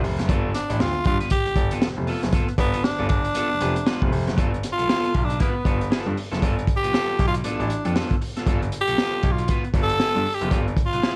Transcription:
0.03 F1, muted clean electric guitar stroke, open hi-hat
0.19 F#1, muted clean electric guitar stroke, snare, closed hi-hat
0.28 G1 B3 F4 A4, kick, closed hi-hat
0.54 D4, snare, closed hi-hat
0.70 A1, muted clean electric guitar stroke, closed hi-hat
0.80 D2 F4, muted clean electric guitar stroke, snare
0.95 muted clean electric guitar stroke
1.05 G2 F4, kick, closed hi-hat
1.20 B3 F4 B4, closed hi-hat
1.30 G4, muted clean electric guitar stroke, kick, closed hi-hat
1.46 G1, muted clean electric guitar stroke, closed hi-hat
1.56 G1, kick, closed hi-hat
1.71 B3 F4 A4, closed hi-hat
1.82 F1, snare
1.97 F1, muted clean electric guitar stroke
2.07 B3 F4 A4, open hi-hat
2.23 F#1, muted clean electric guitar stroke, snare, closed hi-hat
2.33 B3 F4 A4, kick, closed hi-hat
2.48 muted clean electric guitar stroke, closed hi-hat
2.58 G1 B3, muted clean electric guitar stroke, kick, snare, closed hi-hat
2.73 B3 F4 A4, closed hi-hat
2.84 G1 D4, muted clean electric guitar stroke, snare
2.99 G1 B3 F4 A4
3.09 D4, muted clean electric guitar stroke, kick, closed hi-hat
3.25 muted clean electric guitar stroke, closed hi-hat
3.35 B3 F4 A4, closed hi-hat
3.50 F1, muted clean electric guitar stroke
3.60 F1 B3 F4 B4, closed hi-hat
3.76 muted clean electric guitar stroke, closed hi-hat
3.86 B3 F4 B4, snare
4.02 F1, kick
4.12 F1, muted clean electric guitar stroke, open hi-hat
4.27 F#1, muted clean electric guitar stroke, snare, closed hi-hat
4.37 G1 B3 F4 A4, kick, closed hi-hat
4.53 muted clean electric guitar stroke, closed hi-hat
4.62 muted clean electric guitar stroke, snare, closed hi-hat
4.72 F4
4.78 B1 B3 F4 A4, closed hi-hat
4.88 B3 F4 A4, snare
5.04 closed hi-hat
5.14 B1, muted clean electric guitar stroke, kick, closed hi-hat
5.24 D4
5.30 muted clean electric guitar stroke, closed hi-hat
5.39 B3 F4 B4, kick, closed hi-hat
5.55 muted clean electric guitar stroke
5.65 G1 B3 F4 A4, kick, closed hi-hat
5.80 muted clean electric guitar stroke, closed hi-hat
5.90 B3 F4 A4, snare
6.06 G2
6.15 muted clean electric guitar stroke, open hi-hat
6.31 F#1 B3 F4 A4, snare, closed hi-hat
6.42 G1 B3 F4 A4, kick, closed hi-hat
6.57 muted clean electric guitar stroke, closed hi-hat
6.67 muted clean electric guitar stroke, kick, closed hi-hat
6.76 G4
6.83 B1 B3 F4 B4, closed hi-hat
6.93 B3 F4 A4, snare
7.19 B1, muted clean electric guitar stroke, kick, closed hi-hat
7.27 F4
7.34 muted clean electric guitar stroke, closed hi-hat
7.44 A1 B3 D4 F4 A4, closed hi-hat
7.59 A1, closed hi-hat
7.69 muted clean electric guitar stroke, closed hi-hat
7.85 F2 B3 F4 A4, closed hi-hat
7.95 B3 F4 A4, snare
8.11 kick, closed hi-hat
8.21 muted clean electric guitar stroke, open hi-hat
8.37 B3 F4 A4, snare, closed hi-hat
8.46 G1 B3 F4 A4, kick, closed hi-hat
8.62 muted clean electric guitar stroke, closed hi-hat
8.72 muted clean electric guitar stroke, closed hi-hat
8.81 G4
8.87 B1 B3 F4 A4, closed hi-hat
8.98 B3 F4 A4, snare
9.23 B1, muted clean electric guitar stroke, kick, closed hi-hat
9.31 F4
9.38 muted clean electric guitar stroke, closed hi-hat
9.48 B3 F4 B4, kick, closed hi-hat
9.64 muted clean electric guitar stroke, closed hi-hat
9.73 G1 B3 F4 A4, kick, closed hi-hat
9.82 A4
9.89 muted clean electric guitar stroke, closed hi-hat
10.00 B3 F4 A4, snare
10.15 G2, closed hi-hat
10.26 muted clean electric guitar stroke, open hi-hat
10.34 G4
10.41 F#1 B3 F4 A4, closed hi-hat
10.51 G1 B3 F4 A4, kick, closed hi-hat
10.67 muted clean electric guitar stroke, closed hi-hat
10.77 muted clean electric guitar stroke, kick, closed hi-hat
10.86 F4
10.92 B1 B3 F4 B4, closed hi-hat
11.03 B3 F4 A4, snare

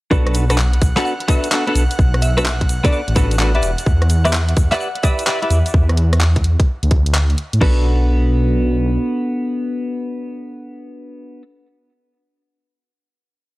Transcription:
0.11 B1 B3 D4 F#4 A4 B4 F#5, kick, shaker
0.27 cross-stick, closed hi-hat
0.34 open hi-hat, shaker
0.50 B3 D4 F#4 A4 B4, cross-stick, closed hi-hat, shaker
0.58 clap
0.73 closed hi-hat
0.82 B1, kick, open hi-hat, shaker
0.96 B3 D4 F#4 A4 B4 F#5, clap, closed hi-hat, shaker
1.05 F#5, shaker
1.20 closed hi-hat
1.28 B3 D4 F#4 A4 B4 E5, kick, open hi-hat, shaker
1.44 closed hi-hat, shaker
1.51 B3 D4 F#4 A4 B4, clap, shaker
1.67 B3 D4 F#4 A4 B4, closed hi-hat
1.75 B1, open hi-hat, shaker
1.91 closed hi-hat, shaker
1.99 B1, kick, shaker
2.14 cross-stick, closed hi-hat
2.22 E5, open hi-hat, shaker
2.37 B3 D4 F#4 A4 B4 E5, cross-stick, closed hi-hat, shaker
2.46 clap, shaker
2.61 kick, closed hi-hat
2.69 B1, open hi-hat, shaker
2.84 B3 D4 F#4 A4 B4 D5, kick, closed hi-hat, shaker
2.92 D5, shaker
3.08 A1, closed hi-hat
3.16 B3 D4 F#4 A4 B4, kick, open hi-hat, shaker
3.31 closed hi-hat, shaker
3.39 B3 D4 F#4 A4 B4, clap, shaker
3.55 E4 G4 B4 D5 E5, closed hi-hat
3.63 E1, open hi-hat, shaker
3.78 closed hi-hat, shaker
3.86 E2, kick
4.02 cross-stick, closed hi-hat
4.10 open hi-hat, shaker
4.25 E4 G4 B4 D5 E5, cross-stick, closed hi-hat, shaker
4.33 clap, shaker
4.49 closed hi-hat
4.57 E2, kick, open hi-hat, shaker
4.71 E4 G4 B4 D5 E5 F#5, clap, closed hi-hat, shaker
4.80 F#5, shaker
4.95 closed hi-hat
5.03 E4 G4 B4 D5 E5, kick, open hi-hat, shaker
5.18 closed hi-hat, shaker
5.27 E4 G4 B4 D5 E5, clap, shaker
5.42 E4 G4 B4 D5 E5, closed hi-hat
5.50 E2, open hi-hat, shaker
5.66 closed hi-hat, shaker
5.74 E2, kick
5.89 cross-stick, closed hi-hat
5.97 open hi-hat
6.13 cross-stick, closed hi-hat
6.21 clap
6.36 kick, closed hi-hat
6.44 E2, open hi-hat
6.60 kick, closed hi-hat
6.83 D2, closed hi-hat
6.91 kick, open hi-hat
7.06 closed hi-hat
7.15 clap
7.30 closed hi-hat
7.38 open hi-hat
7.53 A2, closed hi-hat
7.61 B1 B3 D4 F#4 A4 B4, kick, crash

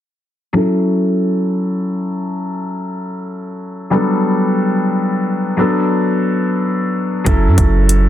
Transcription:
0.53 F#3 C#4 E4 A4
3.90 F#3 G3 B3 D4 A4
5.57 F#3 B3 D4 A4
7.24 F#1 F#3 C#4 E4 A4, kick, closed hi-hat
7.47 F#2
7.58 F#1, kick, closed hi-hat
7.89 closed hi-hat

